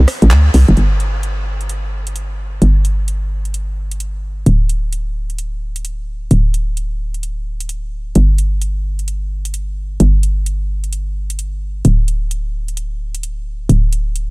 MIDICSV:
0, 0, Header, 1, 3, 480
1, 0, Start_track
1, 0, Tempo, 461538
1, 803, Time_signature, 4, 2, 24, 8
1, 14875, End_track
2, 0, Start_track
2, 0, Title_t, "FM bass"
2, 0, Program_c, 0, 39
2, 231, Note_on_c, 0, 33, 95
2, 323, Note_on_c, 0, 38, 89
2, 339, Note_off_c, 0, 33, 0
2, 523, Note_off_c, 0, 38, 0
2, 564, Note_on_c, 0, 36, 82
2, 680, Note_off_c, 0, 36, 0
2, 713, Note_on_c, 0, 30, 93
2, 784, Note_off_c, 0, 30, 0
2, 804, Note_on_c, 0, 31, 85
2, 2705, Note_off_c, 0, 31, 0
2, 2722, Note_on_c, 0, 31, 83
2, 4625, Note_off_c, 0, 31, 0
2, 4643, Note_on_c, 0, 26, 84
2, 6545, Note_off_c, 0, 26, 0
2, 6562, Note_on_c, 0, 26, 86
2, 8464, Note_off_c, 0, 26, 0
2, 8483, Note_on_c, 0, 31, 87
2, 10385, Note_off_c, 0, 31, 0
2, 10402, Note_on_c, 0, 31, 84
2, 12304, Note_off_c, 0, 31, 0
2, 12323, Note_on_c, 0, 26, 85
2, 14225, Note_off_c, 0, 26, 0
2, 14241, Note_on_c, 0, 26, 84
2, 14875, Note_off_c, 0, 26, 0
2, 14875, End_track
3, 0, Start_track
3, 0, Title_t, "Drums"
3, 80, Note_on_c, 9, 37, 64
3, 80, Note_on_c, 9, 46, 109
3, 184, Note_off_c, 9, 37, 0
3, 184, Note_off_c, 9, 46, 0
3, 230, Note_on_c, 9, 42, 70
3, 321, Note_off_c, 9, 42, 0
3, 321, Note_on_c, 9, 39, 115
3, 321, Note_on_c, 9, 42, 69
3, 425, Note_off_c, 9, 39, 0
3, 425, Note_off_c, 9, 42, 0
3, 561, Note_on_c, 9, 46, 113
3, 665, Note_off_c, 9, 46, 0
3, 710, Note_on_c, 9, 42, 37
3, 800, Note_off_c, 9, 42, 0
3, 800, Note_on_c, 9, 42, 56
3, 904, Note_off_c, 9, 42, 0
3, 1040, Note_on_c, 9, 42, 58
3, 1144, Note_off_c, 9, 42, 0
3, 1281, Note_on_c, 9, 42, 60
3, 1385, Note_off_c, 9, 42, 0
3, 1671, Note_on_c, 9, 42, 32
3, 1762, Note_off_c, 9, 42, 0
3, 1762, Note_on_c, 9, 42, 60
3, 1866, Note_off_c, 9, 42, 0
3, 2150, Note_on_c, 9, 42, 57
3, 2243, Note_off_c, 9, 42, 0
3, 2243, Note_on_c, 9, 42, 61
3, 2347, Note_off_c, 9, 42, 0
3, 2722, Note_on_c, 9, 42, 55
3, 2826, Note_off_c, 9, 42, 0
3, 2962, Note_on_c, 9, 42, 56
3, 3066, Note_off_c, 9, 42, 0
3, 3202, Note_on_c, 9, 42, 60
3, 3306, Note_off_c, 9, 42, 0
3, 3590, Note_on_c, 9, 42, 32
3, 3683, Note_off_c, 9, 42, 0
3, 3683, Note_on_c, 9, 42, 59
3, 3787, Note_off_c, 9, 42, 0
3, 4071, Note_on_c, 9, 42, 55
3, 4162, Note_off_c, 9, 42, 0
3, 4162, Note_on_c, 9, 42, 58
3, 4266, Note_off_c, 9, 42, 0
3, 4642, Note_on_c, 9, 42, 56
3, 4746, Note_off_c, 9, 42, 0
3, 4882, Note_on_c, 9, 42, 56
3, 4986, Note_off_c, 9, 42, 0
3, 5122, Note_on_c, 9, 42, 57
3, 5226, Note_off_c, 9, 42, 0
3, 5509, Note_on_c, 9, 42, 31
3, 5600, Note_off_c, 9, 42, 0
3, 5600, Note_on_c, 9, 42, 59
3, 5704, Note_off_c, 9, 42, 0
3, 5989, Note_on_c, 9, 42, 56
3, 6080, Note_off_c, 9, 42, 0
3, 6080, Note_on_c, 9, 42, 59
3, 6184, Note_off_c, 9, 42, 0
3, 6561, Note_on_c, 9, 42, 58
3, 6665, Note_off_c, 9, 42, 0
3, 6802, Note_on_c, 9, 42, 56
3, 6906, Note_off_c, 9, 42, 0
3, 7041, Note_on_c, 9, 42, 58
3, 7145, Note_off_c, 9, 42, 0
3, 7430, Note_on_c, 9, 42, 32
3, 7520, Note_off_c, 9, 42, 0
3, 7520, Note_on_c, 9, 42, 57
3, 7624, Note_off_c, 9, 42, 0
3, 7909, Note_on_c, 9, 42, 58
3, 7999, Note_off_c, 9, 42, 0
3, 7999, Note_on_c, 9, 42, 57
3, 8103, Note_off_c, 9, 42, 0
3, 8479, Note_on_c, 9, 42, 59
3, 8583, Note_off_c, 9, 42, 0
3, 8719, Note_on_c, 9, 42, 60
3, 8823, Note_off_c, 9, 42, 0
3, 8960, Note_on_c, 9, 42, 60
3, 9064, Note_off_c, 9, 42, 0
3, 9350, Note_on_c, 9, 42, 33
3, 9441, Note_off_c, 9, 42, 0
3, 9441, Note_on_c, 9, 42, 60
3, 9545, Note_off_c, 9, 42, 0
3, 9830, Note_on_c, 9, 42, 59
3, 9920, Note_off_c, 9, 42, 0
3, 9920, Note_on_c, 9, 42, 61
3, 10024, Note_off_c, 9, 42, 0
3, 10400, Note_on_c, 9, 42, 62
3, 10504, Note_off_c, 9, 42, 0
3, 10641, Note_on_c, 9, 42, 62
3, 10745, Note_off_c, 9, 42, 0
3, 10882, Note_on_c, 9, 42, 66
3, 10986, Note_off_c, 9, 42, 0
3, 11271, Note_on_c, 9, 42, 34
3, 11363, Note_off_c, 9, 42, 0
3, 11363, Note_on_c, 9, 42, 65
3, 11467, Note_off_c, 9, 42, 0
3, 11752, Note_on_c, 9, 42, 65
3, 11843, Note_off_c, 9, 42, 0
3, 11843, Note_on_c, 9, 42, 63
3, 11947, Note_off_c, 9, 42, 0
3, 12322, Note_on_c, 9, 42, 63
3, 12426, Note_off_c, 9, 42, 0
3, 12563, Note_on_c, 9, 42, 63
3, 12667, Note_off_c, 9, 42, 0
3, 12803, Note_on_c, 9, 42, 66
3, 12907, Note_off_c, 9, 42, 0
3, 13191, Note_on_c, 9, 42, 35
3, 13282, Note_off_c, 9, 42, 0
3, 13282, Note_on_c, 9, 42, 66
3, 13386, Note_off_c, 9, 42, 0
3, 13671, Note_on_c, 9, 42, 64
3, 13763, Note_off_c, 9, 42, 0
3, 13763, Note_on_c, 9, 42, 63
3, 13867, Note_off_c, 9, 42, 0
3, 14243, Note_on_c, 9, 42, 64
3, 14347, Note_off_c, 9, 42, 0
3, 14483, Note_on_c, 9, 42, 62
3, 14587, Note_off_c, 9, 42, 0
3, 14722, Note_on_c, 9, 42, 65
3, 14826, Note_off_c, 9, 42, 0
3, 14875, End_track
0, 0, End_of_file